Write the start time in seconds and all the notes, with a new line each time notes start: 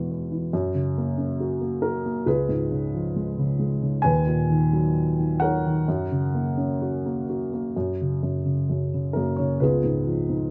Already playing: E2 B2 E3 G#3 B3
0.11 B3
0.32 E3
0.53 F#2
0.75 C#3
0.98 A#3
1.18 C#4
1.40 F#4
1.61 A#3
1.82 F#4 A#4
2.06 A#3
2.26 C#2 F4 G#4 B4
2.49 G#2
2.71 C#3
2.94 F3
3.16 G#3
3.38 C#3
3.59 G#3
3.83 C#3
4.02 D#2 B4 G#5
4.27 A#2
4.50 D#3
4.73 F#3
5.18 D#3
5.40 A#4 C#5 F#5
5.66 D#3
5.88 F#2
6.12 C#3
6.35 A#3
6.58 C#4
6.82 F#4
7.06 A#3
7.29 F#4
7.53 A#3
7.76 F#2
8.01 C#3
8.23 F#2
8.45 C#3
8.70 F#2
8.94 C#3
9.13 F#2 A#3 A#4
9.36 C#3 C#4 C#5
9.60 C#2 B3 F4 G#4 B4
9.84 G#2
10.06 F3
10.29 G#2